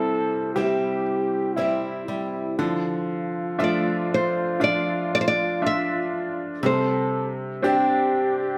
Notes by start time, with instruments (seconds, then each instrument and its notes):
Already playing: grand piano C3 G3 C4, steel-string acoustic guitar G3 C4 E4, french horn A4, nylon-string guitar E5
0.55 steel-string acoustic guitar G3 C4 E4, french horn G4, grand piano G4
1.56 steel-string acoustic guitar G3 C4 E4, french horn E4, grand piano E4
2.08 steel-string acoustic guitar G3, french horn E4
2.59 grand piano D3, steel-string acoustic guitar F3, french horn F4
3.59 steel-string acoustic guitar F3 A3, grand piano D4 F4 E5
3.64 nylon-string guitar D5
4.14 nylon-string guitar C5
4.60 steel-string acoustic guitar F3, grand piano D4 F4 E5, nylon-string guitar D5
5.15 nylon-string guitar D5
5.21 nylon-string guitar C5
5.28 nylon-string guitar D5
5.62 grand piano D4 F4 E5
5.66 nylon-string guitar E5
6.63 grand piano C3, steel-string acoustic guitar G3, french horn A4, nylon-string guitar C5
7.62 grand piano C4 D4 G4, steel-string acoustic guitar C4 D4 G4, french horn G4